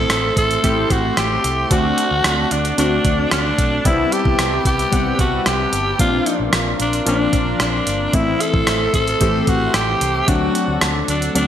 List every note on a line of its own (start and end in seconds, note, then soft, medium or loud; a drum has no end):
0.00 0.50 A3 medium
0.00 0.50 C4 medium
0.00 0.50 E4 medium
0.00 0.37 A4 loud
0.00 0.50 A4 medium
0.00 3.81 A4 medium
0.00 1.69 C5 medium
0.00 1.69 E5 medium
0.00 1.69 C6 medium
0.10 0.30 A1 medium
0.10 cross-stick loud
0.10 closed hi-hat medium
0.37 0.56 A1 medium
0.37 0.93 A4 loud
0.37 kick medium
0.37 closed hi-hat medium
0.51 closed hi-hat soft
0.63 0.83 A1 loud
0.63 1.57 A3 medium
0.63 1.57 C4 medium
0.63 1.57 E4 medium
0.63 1.58 G4 medium
0.63 kick medium
0.63 closed hi-hat medium
0.90 1.10 A1 medium
0.90 1.18 F#4 medium
0.90 kick medium
0.90 closed hi-hat medium
1.17 1.37 A1 medium
1.17 1.73 G4 loud
1.17 cross-stick loud
1.17 closed hi-hat medium
1.44 1.64 C2 medium
1.44 closed hi-hat medium
1.70 1.90 D2 loud
1.70 2.64 A3 medium
1.70 2.64 C4 medium
1.70 2.65 D4 medium
1.70 2.65 F#4 medium
1.70 2.54 F#4 loud
1.70 3.83 D5 medium
1.70 3.83 F#5 medium
1.70 5.95 A5 medium
1.70 kick loud
1.70 closed hi-hat loud
1.98 closed hi-hat medium
2.11 2.21 D2 medium
2.24 2.44 D2 medium
2.24 cross-stick loud
2.24 closed hi-hat medium
2.51 2.71 D2 medium
2.51 2.78 D4 medium
2.51 closed hi-hat medium
2.65 closed hi-hat soft
2.78 2.97 D2 loud
2.78 3.71 A3 medium
2.78 3.72 C4 medium
2.78 3.72 D4 medium
2.78 3.28 D4 medium
2.78 3.72 F#4 medium
2.78 closed hi-hat medium
3.05 3.24 D2 medium
3.05 kick medium
3.05 closed hi-hat medium
3.31 3.51 D2 loud
3.31 3.88 D4 medium
3.31 cross-stick loud
3.31 closed hi-hat medium
3.58 3.78 B1 medium
3.58 kick medium
3.58 closed hi-hat medium
3.85 4.05 C2 loud
3.85 4.79 G3 medium
3.85 4.79 B3 medium
3.85 4.79 C4 medium
3.85 4.79 E4 medium
3.85 4.14 E4 medium
3.85 5.97 G4 medium
3.85 5.97 B4 medium
3.85 5.97 E5 medium
3.85 kick loud
3.85 closed hi-hat loud
4.12 4.66 G4 medium
4.12 closed hi-hat medium
4.25 4.35 C2 medium
4.25 kick medium
4.39 4.58 C2 medium
4.39 cross-stick loud
4.39 closed hi-hat medium
4.65 4.85 C2 medium
4.65 5.16 G4 medium
4.65 kick medium
4.65 closed hi-hat medium
4.79 closed hi-hat soft
4.92 5.12 C2 loud
4.92 5.86 G3 medium
4.92 5.86 B3 medium
4.92 5.86 C4 medium
4.92 5.86 F#5 medium
4.92 kick medium
4.92 closed hi-hat medium
5.19 5.38 C2 medium
5.19 5.49 F#4 medium
5.19 kick medium
5.19 closed hi-hat medium
5.46 5.65 C2 loud
5.46 6.00 G4 medium
5.46 cross-stick loud
5.46 closed hi-hat medium
5.73 5.92 G1 medium
5.73 closed hi-hat medium
5.99 6.19 A#1 medium
5.99 6.93 F3 medium
5.99 6.93 A#3 medium
5.99 6.93 C4 medium
5.99 6.93 D4 medium
5.99 6.50 F4 medium
5.99 8.12 A#4 medium
5.99 8.12 D5 medium
5.99 8.12 F5 medium
5.99 8.12 C6 medium
5.99 kick loud
5.99 closed hi-hat medium
6.26 closed hi-hat medium
6.40 6.49 A#1 medium
6.53 6.72 A#1 medium
6.53 cross-stick loud
6.53 closed hi-hat medium
6.80 6.99 A#1 medium
6.80 7.06 D4 medium
6.80 closed hi-hat medium
6.93 closed hi-hat soft
7.06 7.26 A#1 loud
7.06 8.00 F3 medium
7.06 8.00 A#3 medium
7.06 8.00 C4 medium
7.06 8.00 D4 medium
7.06 7.57 D4 medium
7.06 closed hi-hat medium
7.33 7.52 A#1 medium
7.33 kick medium
7.33 closed hi-hat medium
7.60 7.79 A#1 loud
7.60 8.16 D4 medium
7.60 cross-stick loud
7.60 closed hi-hat medium
7.87 8.06 G1 medium
7.87 closed hi-hat medium
8.13 8.33 A1 medium
8.13 9.07 E3 medium
8.13 9.07 A3 medium
8.13 9.07 C4 medium
8.13 9.08 E4 medium
8.13 8.43 E4 loud
8.13 10.26 A4 medium
8.13 10.26 C5 medium
8.13 10.26 E5 medium
8.13 10.26 C6 medium
8.13 kick loud
8.13 closed hi-hat medium
8.41 8.94 A4 loud
8.41 closed hi-hat medium
8.54 8.63 A1 medium
8.54 kick medium
8.67 8.86 A1 medium
8.67 cross-stick loud
8.67 closed hi-hat medium
8.94 9.13 A1 medium
8.94 9.50 A4 medium
8.94 kick medium
8.94 closed hi-hat medium
9.08 closed hi-hat soft
9.20 9.40 A1 loud
9.20 10.14 E3 medium
9.20 10.14 A3 medium
9.20 10.15 C4 medium
9.20 10.15 G4 medium
9.20 kick medium
9.20 closed hi-hat medium
9.47 9.67 A1 medium
9.47 9.77 F#4 medium
9.47 kick medium
9.47 closed hi-hat medium
9.74 9.94 A1 medium
9.74 10.30 G4 medium
9.74 cross-stick loud
9.74 closed hi-hat medium
10.01 10.20 C2 medium
10.01 closed hi-hat medium
10.27 10.47 D2 medium
10.27 11.21 F#3 medium
10.27 11.21 A3 medium
10.27 11.22 C4 medium
10.27 11.22 D4 medium
10.27 10.82 F#4 medium
10.27 11.47 A4 medium
10.27 11.47 D5 medium
10.27 11.47 F#5 medium
10.27 11.47 A5 medium
10.27 kick loud
10.27 closed hi-hat medium
10.55 closed hi-hat medium
10.68 10.78 D2 medium
10.81 11.01 D2 medium
10.81 cross-stick loud
10.81 closed hi-hat medium
11.08 11.28 D2 medium
11.08 11.34 D4 medium
11.08 closed hi-hat medium
11.22 closed hi-hat medium
11.35 11.47 D2 loud
11.35 11.47 F#3 medium
11.35 11.47 A3 medium
11.35 11.47 C4 medium
11.35 11.47 D4 medium
11.35 closed hi-hat medium